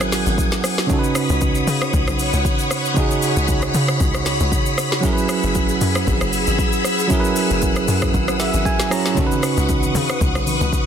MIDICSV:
0, 0, Header, 1, 5, 480
1, 0, Start_track
1, 0, Key_signature, 4, "minor"
1, 0, Tempo, 517241
1, 833, Time_signature, 4, 2, 24, 8
1, 10079, End_track
2, 0, Start_track
2, 0, Title_t, "String machine"
2, 0, Program_c, 0, 50
2, 0, Note_on_c, 0, 59, 87
2, 0, Note_on_c, 0, 78, 76
2, 0, Note_on_c, 0, 80, 83
2, 0, Note_on_c, 0, 87, 92
2, 795, Note_off_c, 0, 78, 0
2, 796, Note_off_c, 0, 80, 0
2, 797, Note_off_c, 0, 59, 0
2, 832, Note_on_c, 0, 78, 80
2, 832, Note_on_c, 0, 83, 77
2, 833, Note_on_c, 0, 73, 82
2, 4635, Note_off_c, 0, 87, 0
2, 4636, Note_off_c, 0, 73, 0
2, 4636, Note_off_c, 0, 78, 0
2, 4675, Note_on_c, 0, 88, 95
2, 4676, Note_on_c, 0, 68, 89
2, 4677, Note_on_c, 0, 78, 81
2, 8475, Note_off_c, 0, 83, 0
2, 8477, Note_off_c, 0, 68, 0
2, 8477, Note_off_c, 0, 88, 0
2, 8513, Note_on_c, 0, 71, 88
2, 8513, Note_on_c, 0, 85, 78
2, 8514, Note_on_c, 0, 87, 93
2, 10079, Note_off_c, 0, 71, 0
2, 10079, Note_off_c, 0, 78, 0
2, 10079, Note_off_c, 0, 85, 0
2, 10079, Note_off_c, 0, 87, 0
2, 10079, End_track
3, 0, Start_track
3, 0, Title_t, "Tine electric piano"
3, 0, Program_c, 1, 4
3, 0, Control_c, 1, 64, 127
3, 0, Note_on_c, 1, 54, 80
3, 0, Note_on_c, 1, 61, 70
3, 0, Note_on_c, 1, 64, 71
3, 0, Note_on_c, 1, 68, 71
3, 0, Note_on_c, 1, 70, 85
3, 781, Note_off_c, 1, 54, 0
3, 788, Note_off_c, 1, 61, 0
3, 795, Note_off_c, 1, 64, 0
3, 802, Note_off_c, 1, 68, 0
3, 805, Note_on_c, 1, 49, 76
3, 809, Note_off_c, 1, 70, 0
3, 818, Note_on_c, 1, 61, 69
3, 832, Note_on_c, 1, 63, 70
3, 847, Control_c, 1, 64, 0
3, 847, Note_on_c, 1, 66, 69
3, 861, Note_on_c, 1, 69, 69
3, 911, Note_off_c, 1, 69, 0
3, 918, Note_on_c, 1, 71, 80
3, 1018, Control_c, 1, 64, 127
3, 2702, Note_off_c, 1, 49, 0
3, 2708, Note_off_c, 1, 61, 0
3, 2716, Note_off_c, 1, 63, 0
3, 2723, Note_off_c, 1, 66, 0
3, 2727, Note_on_c, 1, 49, 78
3, 2742, Note_on_c, 1, 61, 69
3, 2756, Note_on_c, 1, 63, 72
3, 2758, Note_off_c, 1, 71, 0
3, 2769, Note_on_c, 1, 66, 72
3, 2784, Note_on_c, 1, 68, 82
3, 4623, Note_off_c, 1, 49, 0
3, 4631, Note_off_c, 1, 61, 0
3, 4637, Note_off_c, 1, 63, 0
3, 4644, Note_off_c, 1, 66, 0
3, 4645, Note_on_c, 1, 54, 78
3, 4651, Note_off_c, 1, 68, 0
3, 4661, Note_on_c, 1, 61, 68
3, 4674, Note_on_c, 1, 64, 73
3, 4684, Control_c, 1, 64, 0
3, 4688, Note_on_c, 1, 68, 70
3, 4703, Note_on_c, 1, 70, 69
3, 4751, Note_off_c, 1, 70, 0
3, 4760, Note_on_c, 1, 71, 82
3, 4870, Control_c, 1, 64, 127
3, 6542, Note_off_c, 1, 54, 0
3, 6550, Note_off_c, 1, 61, 0
3, 6556, Note_off_c, 1, 64, 0
3, 6563, Note_off_c, 1, 68, 0
3, 6565, Note_on_c, 1, 54, 75
3, 6579, Note_on_c, 1, 61, 69
3, 6594, Note_on_c, 1, 64, 74
3, 6599, Note_off_c, 1, 71, 0
3, 6607, Note_on_c, 1, 68, 72
3, 6622, Note_on_c, 1, 70, 69
3, 6671, Note_off_c, 1, 70, 0
3, 6679, Note_on_c, 1, 71, 86
3, 7793, Note_on_c, 1, 76, 77
3, 8016, Note_off_c, 1, 76, 0
3, 8032, Note_on_c, 1, 80, 81
3, 8225, Note_off_c, 1, 54, 0
3, 8232, Note_off_c, 1, 61, 0
3, 8240, Note_off_c, 1, 64, 0
3, 8247, Note_off_c, 1, 68, 0
3, 8256, Note_off_c, 1, 80, 0
3, 8258, Note_on_c, 1, 54, 56
3, 8265, Note_on_c, 1, 61, 53
3, 8270, Note_on_c, 1, 64, 50
3, 8271, Note_on_c, 1, 82, 70
3, 8278, Note_on_c, 1, 68, 54
3, 8283, Note_off_c, 1, 71, 0
3, 8286, Note_on_c, 1, 73, 64
3, 8485, Note_on_c, 1, 49, 73
3, 8488, Note_off_c, 1, 61, 0
3, 8495, Note_off_c, 1, 82, 0
3, 8499, Note_on_c, 1, 61, 68
3, 8506, Note_off_c, 1, 54, 0
3, 8512, Note_off_c, 1, 64, 0
3, 8513, Note_on_c, 1, 63, 69
3, 8516, Note_off_c, 1, 68, 0
3, 8520, Note_off_c, 1, 73, 0
3, 8526, Control_c, 1, 64, 0
3, 8527, Note_on_c, 1, 66, 72
3, 8541, Note_on_c, 1, 69, 67
3, 8591, Note_off_c, 1, 69, 0
3, 8598, Note_on_c, 1, 71, 88
3, 8675, Control_c, 1, 64, 127
3, 10079, Note_off_c, 1, 49, 0
3, 10079, Note_off_c, 1, 61, 0
3, 10079, Note_off_c, 1, 63, 0
3, 10079, Note_off_c, 1, 66, 0
3, 10079, Note_off_c, 1, 71, 0
3, 10079, End_track
4, 0, Start_track
4, 0, Title_t, "Log drum bass"
4, 0, Program_c, 2, 39
4, 0, Note_on_c, 2, 32, 106
4, 216, Note_off_c, 2, 32, 0
4, 245, Note_on_c, 2, 32, 89
4, 344, Note_off_c, 2, 32, 0
4, 1204, Note_on_c, 2, 37, 96
4, 1524, Note_off_c, 2, 37, 0
4, 1552, Note_on_c, 2, 49, 109
4, 1773, Note_off_c, 2, 49, 0
4, 1795, Note_on_c, 2, 37, 101
4, 1915, Note_off_c, 2, 37, 0
4, 1927, Note_on_c, 2, 35, 99
4, 2146, Note_off_c, 2, 35, 0
4, 2165, Note_on_c, 2, 37, 89
4, 2264, Note_off_c, 2, 37, 0
4, 3124, Note_on_c, 2, 37, 99
4, 3444, Note_off_c, 2, 37, 0
4, 3474, Note_on_c, 2, 49, 103
4, 3694, Note_off_c, 2, 49, 0
4, 3717, Note_on_c, 2, 37, 98
4, 4056, Note_off_c, 2, 37, 0
4, 4087, Note_on_c, 2, 37, 95
4, 4185, Note_off_c, 2, 37, 0
4, 5046, Note_on_c, 2, 30, 97
4, 5365, Note_off_c, 2, 30, 0
4, 5394, Note_on_c, 2, 42, 108
4, 5613, Note_off_c, 2, 42, 0
4, 5634, Note_on_c, 2, 32, 105
4, 5755, Note_off_c, 2, 32, 0
4, 5766, Note_on_c, 2, 30, 86
4, 5986, Note_off_c, 2, 30, 0
4, 6007, Note_on_c, 2, 32, 90
4, 6105, Note_off_c, 2, 32, 0
4, 6967, Note_on_c, 2, 30, 100
4, 7285, Note_off_c, 2, 30, 0
4, 7313, Note_on_c, 2, 42, 104
4, 7533, Note_off_c, 2, 42, 0
4, 7554, Note_on_c, 2, 32, 104
4, 7895, Note_off_c, 2, 32, 0
4, 7924, Note_on_c, 2, 32, 92
4, 8024, Note_off_c, 2, 32, 0
4, 8884, Note_on_c, 2, 37, 94
4, 9204, Note_off_c, 2, 37, 0
4, 9233, Note_on_c, 2, 49, 103
4, 9453, Note_off_c, 2, 49, 0
4, 9475, Note_on_c, 2, 37, 97
4, 9595, Note_off_c, 2, 37, 0
4, 9604, Note_on_c, 2, 35, 100
4, 9825, Note_off_c, 2, 35, 0
4, 9845, Note_on_c, 2, 37, 97
4, 9944, Note_off_c, 2, 37, 0
4, 10079, End_track
5, 0, Start_track
5, 0, Title_t, "Drums"
5, 7, Note_on_c, 9, 37, 110
5, 7, Note_on_c, 9, 82, 57
5, 99, Note_off_c, 9, 82, 0
5, 100, Note_off_c, 9, 37, 0
5, 115, Note_on_c, 9, 38, 67
5, 116, Note_on_c, 9, 46, 53
5, 116, Note_on_c, 9, 82, 94
5, 208, Note_off_c, 9, 38, 0
5, 209, Note_off_c, 9, 46, 0
5, 209, Note_off_c, 9, 82, 0
5, 245, Note_on_c, 9, 82, 54
5, 337, Note_off_c, 9, 82, 0
5, 352, Note_on_c, 9, 36, 94
5, 358, Note_on_c, 9, 82, 67
5, 445, Note_off_c, 9, 36, 0
5, 451, Note_off_c, 9, 82, 0
5, 482, Note_on_c, 9, 38, 71
5, 483, Note_on_c, 9, 82, 55
5, 575, Note_off_c, 9, 38, 0
5, 576, Note_off_c, 9, 82, 0
5, 592, Note_on_c, 9, 37, 100
5, 597, Note_on_c, 9, 46, 64
5, 597, Note_on_c, 9, 82, 105
5, 685, Note_off_c, 9, 37, 0
5, 690, Note_off_c, 9, 46, 0
5, 690, Note_off_c, 9, 82, 0
5, 725, Note_on_c, 9, 38, 68
5, 728, Note_on_c, 9, 82, 49
5, 818, Note_off_c, 9, 38, 0
5, 821, Note_off_c, 9, 82, 0
5, 831, Note_on_c, 9, 82, 76
5, 832, Note_on_c, 9, 36, 121
5, 923, Note_off_c, 9, 82, 0
5, 925, Note_off_c, 9, 36, 0
5, 963, Note_on_c, 9, 82, 55
5, 1056, Note_off_c, 9, 82, 0
5, 1069, Note_on_c, 9, 37, 99
5, 1070, Note_on_c, 9, 46, 51
5, 1070, Note_on_c, 9, 82, 95
5, 1161, Note_off_c, 9, 37, 0
5, 1163, Note_off_c, 9, 46, 0
5, 1163, Note_off_c, 9, 82, 0
5, 1201, Note_on_c, 9, 82, 50
5, 1294, Note_off_c, 9, 82, 0
5, 1309, Note_on_c, 9, 82, 73
5, 1313, Note_on_c, 9, 36, 101
5, 1402, Note_off_c, 9, 82, 0
5, 1406, Note_off_c, 9, 36, 0
5, 1437, Note_on_c, 9, 82, 51
5, 1530, Note_off_c, 9, 82, 0
5, 1555, Note_on_c, 9, 46, 60
5, 1555, Note_on_c, 9, 82, 94
5, 1648, Note_off_c, 9, 46, 0
5, 1648, Note_off_c, 9, 82, 0
5, 1683, Note_on_c, 9, 82, 57
5, 1685, Note_on_c, 9, 37, 102
5, 1776, Note_off_c, 9, 82, 0
5, 1778, Note_off_c, 9, 37, 0
5, 1795, Note_on_c, 9, 36, 120
5, 1796, Note_on_c, 9, 82, 73
5, 1888, Note_off_c, 9, 36, 0
5, 1889, Note_off_c, 9, 82, 0
5, 1926, Note_on_c, 9, 37, 112
5, 1926, Note_on_c, 9, 82, 57
5, 2019, Note_off_c, 9, 37, 0
5, 2019, Note_off_c, 9, 82, 0
5, 2035, Note_on_c, 9, 46, 54
5, 2035, Note_on_c, 9, 82, 90
5, 2128, Note_off_c, 9, 46, 0
5, 2128, Note_off_c, 9, 82, 0
5, 2164, Note_on_c, 9, 82, 55
5, 2257, Note_off_c, 9, 82, 0
5, 2272, Note_on_c, 9, 36, 96
5, 2276, Note_on_c, 9, 82, 67
5, 2365, Note_off_c, 9, 36, 0
5, 2369, Note_off_c, 9, 82, 0
5, 2402, Note_on_c, 9, 82, 58
5, 2495, Note_off_c, 9, 82, 0
5, 2512, Note_on_c, 9, 37, 100
5, 2517, Note_on_c, 9, 46, 60
5, 2517, Note_on_c, 9, 82, 106
5, 2605, Note_off_c, 9, 37, 0
5, 2610, Note_off_c, 9, 46, 0
5, 2610, Note_off_c, 9, 82, 0
5, 2647, Note_on_c, 9, 82, 49
5, 2740, Note_off_c, 9, 82, 0
5, 2751, Note_on_c, 9, 82, 78
5, 2753, Note_on_c, 9, 36, 120
5, 2844, Note_off_c, 9, 82, 0
5, 2845, Note_off_c, 9, 36, 0
5, 2885, Note_on_c, 9, 82, 58
5, 2978, Note_off_c, 9, 82, 0
5, 2992, Note_on_c, 9, 46, 52
5, 2992, Note_on_c, 9, 82, 90
5, 3084, Note_off_c, 9, 46, 0
5, 3084, Note_off_c, 9, 82, 0
5, 3123, Note_on_c, 9, 82, 51
5, 3216, Note_off_c, 9, 82, 0
5, 3230, Note_on_c, 9, 82, 74
5, 3234, Note_on_c, 9, 36, 98
5, 3323, Note_off_c, 9, 82, 0
5, 3327, Note_off_c, 9, 36, 0
5, 3359, Note_on_c, 9, 82, 54
5, 3365, Note_on_c, 9, 37, 98
5, 3452, Note_off_c, 9, 82, 0
5, 3458, Note_off_c, 9, 37, 0
5, 3475, Note_on_c, 9, 46, 59
5, 3475, Note_on_c, 9, 82, 99
5, 3568, Note_off_c, 9, 46, 0
5, 3568, Note_off_c, 9, 82, 0
5, 3602, Note_on_c, 9, 82, 58
5, 3604, Note_on_c, 9, 37, 105
5, 3695, Note_off_c, 9, 82, 0
5, 3697, Note_off_c, 9, 37, 0
5, 3716, Note_on_c, 9, 36, 122
5, 3716, Note_on_c, 9, 82, 74
5, 3808, Note_off_c, 9, 36, 0
5, 3809, Note_off_c, 9, 82, 0
5, 3846, Note_on_c, 9, 37, 107
5, 3846, Note_on_c, 9, 82, 59
5, 3939, Note_off_c, 9, 37, 0
5, 3939, Note_off_c, 9, 82, 0
5, 3953, Note_on_c, 9, 38, 66
5, 3954, Note_on_c, 9, 46, 52
5, 3954, Note_on_c, 9, 82, 92
5, 4045, Note_off_c, 9, 38, 0
5, 4047, Note_off_c, 9, 46, 0
5, 4047, Note_off_c, 9, 82, 0
5, 4084, Note_on_c, 9, 82, 55
5, 4177, Note_off_c, 9, 82, 0
5, 4193, Note_on_c, 9, 36, 94
5, 4198, Note_on_c, 9, 82, 66
5, 4286, Note_off_c, 9, 36, 0
5, 4291, Note_off_c, 9, 82, 0
5, 4323, Note_on_c, 9, 82, 57
5, 4415, Note_off_c, 9, 82, 0
5, 4434, Note_on_c, 9, 37, 100
5, 4439, Note_on_c, 9, 46, 59
5, 4439, Note_on_c, 9, 82, 101
5, 4526, Note_off_c, 9, 37, 0
5, 4531, Note_off_c, 9, 46, 0
5, 4531, Note_off_c, 9, 82, 0
5, 4567, Note_on_c, 9, 38, 72
5, 4570, Note_on_c, 9, 82, 48
5, 4660, Note_off_c, 9, 38, 0
5, 4662, Note_off_c, 9, 82, 0
5, 4671, Note_on_c, 9, 82, 72
5, 4673, Note_on_c, 9, 36, 126
5, 4764, Note_off_c, 9, 82, 0
5, 4766, Note_off_c, 9, 36, 0
5, 4806, Note_on_c, 9, 82, 57
5, 4899, Note_off_c, 9, 82, 0
5, 4909, Note_on_c, 9, 37, 100
5, 4910, Note_on_c, 9, 46, 53
5, 4910, Note_on_c, 9, 82, 89
5, 5002, Note_off_c, 9, 37, 0
5, 5003, Note_off_c, 9, 46, 0
5, 5003, Note_off_c, 9, 82, 0
5, 5042, Note_on_c, 9, 82, 48
5, 5135, Note_off_c, 9, 82, 0
5, 5150, Note_on_c, 9, 82, 73
5, 5154, Note_on_c, 9, 36, 100
5, 5243, Note_off_c, 9, 82, 0
5, 5247, Note_off_c, 9, 36, 0
5, 5278, Note_on_c, 9, 82, 54
5, 5371, Note_off_c, 9, 82, 0
5, 5394, Note_on_c, 9, 46, 58
5, 5394, Note_on_c, 9, 82, 97
5, 5487, Note_off_c, 9, 46, 0
5, 5487, Note_off_c, 9, 82, 0
5, 5524, Note_on_c, 9, 82, 59
5, 5526, Note_on_c, 9, 37, 105
5, 5617, Note_off_c, 9, 82, 0
5, 5618, Note_off_c, 9, 37, 0
5, 5635, Note_on_c, 9, 36, 118
5, 5635, Note_on_c, 9, 82, 73
5, 5728, Note_off_c, 9, 36, 0
5, 5728, Note_off_c, 9, 82, 0
5, 5764, Note_on_c, 9, 37, 102
5, 5764, Note_on_c, 9, 82, 56
5, 5856, Note_off_c, 9, 82, 0
5, 5857, Note_off_c, 9, 37, 0
5, 5874, Note_on_c, 9, 46, 54
5, 5874, Note_on_c, 9, 82, 92
5, 5967, Note_off_c, 9, 46, 0
5, 5967, Note_off_c, 9, 82, 0
5, 6003, Note_on_c, 9, 82, 55
5, 6095, Note_off_c, 9, 82, 0
5, 6111, Note_on_c, 9, 36, 91
5, 6115, Note_on_c, 9, 82, 68
5, 6204, Note_off_c, 9, 36, 0
5, 6208, Note_off_c, 9, 82, 0
5, 6241, Note_on_c, 9, 82, 58
5, 6334, Note_off_c, 9, 82, 0
5, 6352, Note_on_c, 9, 37, 95
5, 6357, Note_on_c, 9, 46, 63
5, 6357, Note_on_c, 9, 82, 109
5, 6445, Note_off_c, 9, 37, 0
5, 6450, Note_off_c, 9, 46, 0
5, 6450, Note_off_c, 9, 82, 0
5, 6487, Note_on_c, 9, 82, 49
5, 6580, Note_off_c, 9, 82, 0
5, 6590, Note_on_c, 9, 82, 76
5, 6592, Note_on_c, 9, 36, 120
5, 6683, Note_off_c, 9, 82, 0
5, 6684, Note_off_c, 9, 36, 0
5, 6724, Note_on_c, 9, 82, 57
5, 6817, Note_off_c, 9, 82, 0
5, 6830, Note_on_c, 9, 46, 52
5, 6830, Note_on_c, 9, 82, 87
5, 6923, Note_off_c, 9, 46, 0
5, 6923, Note_off_c, 9, 82, 0
5, 6962, Note_on_c, 9, 82, 47
5, 7055, Note_off_c, 9, 82, 0
5, 7070, Note_on_c, 9, 82, 70
5, 7074, Note_on_c, 9, 36, 99
5, 7162, Note_off_c, 9, 82, 0
5, 7166, Note_off_c, 9, 36, 0
5, 7199, Note_on_c, 9, 82, 55
5, 7205, Note_on_c, 9, 37, 97
5, 7292, Note_off_c, 9, 82, 0
5, 7297, Note_off_c, 9, 37, 0
5, 7315, Note_on_c, 9, 46, 59
5, 7315, Note_on_c, 9, 82, 94
5, 7407, Note_off_c, 9, 46, 0
5, 7407, Note_off_c, 9, 82, 0
5, 7442, Note_on_c, 9, 82, 56
5, 7444, Note_on_c, 9, 37, 100
5, 7445, Note_on_c, 9, 36, 98
5, 7535, Note_off_c, 9, 82, 0
5, 7536, Note_off_c, 9, 37, 0
5, 7538, Note_off_c, 9, 36, 0
5, 7554, Note_on_c, 9, 36, 117
5, 7554, Note_on_c, 9, 82, 69
5, 7647, Note_off_c, 9, 36, 0
5, 7647, Note_off_c, 9, 82, 0
5, 7684, Note_on_c, 9, 82, 55
5, 7685, Note_on_c, 9, 37, 107
5, 7777, Note_off_c, 9, 82, 0
5, 7778, Note_off_c, 9, 37, 0
5, 7792, Note_on_c, 9, 38, 70
5, 7794, Note_on_c, 9, 46, 53
5, 7794, Note_on_c, 9, 82, 93
5, 7885, Note_off_c, 9, 38, 0
5, 7887, Note_off_c, 9, 46, 0
5, 7887, Note_off_c, 9, 82, 0
5, 7922, Note_on_c, 9, 82, 55
5, 8015, Note_off_c, 9, 82, 0
5, 8031, Note_on_c, 9, 36, 91
5, 8034, Note_on_c, 9, 82, 66
5, 8124, Note_off_c, 9, 36, 0
5, 8127, Note_off_c, 9, 82, 0
5, 8162, Note_on_c, 9, 38, 69
5, 8162, Note_on_c, 9, 82, 59
5, 8254, Note_off_c, 9, 38, 0
5, 8255, Note_off_c, 9, 82, 0
5, 8271, Note_on_c, 9, 37, 103
5, 8276, Note_on_c, 9, 46, 61
5, 8276, Note_on_c, 9, 82, 108
5, 8364, Note_off_c, 9, 37, 0
5, 8369, Note_off_c, 9, 46, 0
5, 8369, Note_off_c, 9, 82, 0
5, 8404, Note_on_c, 9, 38, 70
5, 8407, Note_on_c, 9, 82, 48
5, 8497, Note_off_c, 9, 38, 0
5, 8499, Note_off_c, 9, 82, 0
5, 8510, Note_on_c, 9, 82, 79
5, 8511, Note_on_c, 9, 64, 79
5, 8512, Note_on_c, 9, 36, 124
5, 8602, Note_off_c, 9, 82, 0
5, 8603, Note_off_c, 9, 64, 0
5, 8605, Note_off_c, 9, 36, 0
5, 8645, Note_on_c, 9, 82, 56
5, 8650, Note_on_c, 9, 63, 76
5, 8738, Note_off_c, 9, 82, 0
5, 8743, Note_off_c, 9, 63, 0
5, 8751, Note_on_c, 9, 37, 97
5, 8752, Note_on_c, 9, 46, 53
5, 8752, Note_on_c, 9, 82, 87
5, 8844, Note_off_c, 9, 37, 0
5, 8845, Note_off_c, 9, 46, 0
5, 8845, Note_off_c, 9, 82, 0
5, 8884, Note_on_c, 9, 82, 49
5, 8977, Note_off_c, 9, 82, 0
5, 8992, Note_on_c, 9, 82, 69
5, 8994, Note_on_c, 9, 36, 100
5, 9085, Note_off_c, 9, 82, 0
5, 9087, Note_off_c, 9, 36, 0
5, 9121, Note_on_c, 9, 82, 53
5, 9126, Note_on_c, 9, 63, 52
5, 9214, Note_off_c, 9, 82, 0
5, 9219, Note_off_c, 9, 63, 0
5, 9232, Note_on_c, 9, 63, 80
5, 9232, Note_on_c, 9, 64, 83
5, 9237, Note_on_c, 9, 46, 60
5, 9237, Note_on_c, 9, 82, 99
5, 9325, Note_off_c, 9, 63, 0
5, 9325, Note_off_c, 9, 64, 0
5, 9330, Note_off_c, 9, 46, 0
5, 9330, Note_off_c, 9, 82, 0
5, 9367, Note_on_c, 9, 82, 55
5, 9369, Note_on_c, 9, 37, 106
5, 9459, Note_off_c, 9, 82, 0
5, 9461, Note_off_c, 9, 37, 0
5, 9473, Note_on_c, 9, 64, 70
5, 9476, Note_on_c, 9, 36, 116
5, 9479, Note_on_c, 9, 82, 73
5, 9566, Note_off_c, 9, 64, 0
5, 9569, Note_off_c, 9, 36, 0
5, 9571, Note_off_c, 9, 82, 0
5, 9608, Note_on_c, 9, 37, 102
5, 9608, Note_on_c, 9, 82, 56
5, 9701, Note_off_c, 9, 37, 0
5, 9701, Note_off_c, 9, 82, 0
5, 9713, Note_on_c, 9, 63, 72
5, 9717, Note_on_c, 9, 46, 54
5, 9717, Note_on_c, 9, 82, 89
5, 9806, Note_off_c, 9, 63, 0
5, 9810, Note_off_c, 9, 46, 0
5, 9810, Note_off_c, 9, 82, 0
5, 9845, Note_on_c, 9, 82, 55
5, 9846, Note_on_c, 9, 63, 77
5, 9938, Note_off_c, 9, 82, 0
5, 9939, Note_off_c, 9, 63, 0
5, 9953, Note_on_c, 9, 36, 94
5, 9958, Note_on_c, 9, 82, 67
5, 10046, Note_off_c, 9, 36, 0
5, 10051, Note_off_c, 9, 82, 0
5, 10079, End_track
0, 0, End_of_file